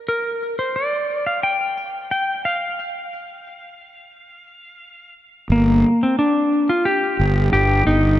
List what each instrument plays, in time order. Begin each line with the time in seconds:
0.09 electric slide guitar A#4
0.59 electric slide guitar C5
0.76 electric slide guitar D5
1.27 electric slide guitar F5
1.43 electric slide guitar G5
2.11 electric slide guitar G5
2.45 electric slide guitar F5
5.50 fingered electric bass G1, electric slide guitar A#3
6.03 electric slide guitar C4
6.19 electric slide guitar D4
6.69 electric slide guitar F4
6.85 electric slide guitar G4
7.20 fingered electric bass G1
7.53 fingered electric bass G1, electric slide guitar G4
7.87 fingered electric bass G1, electric slide guitar D#4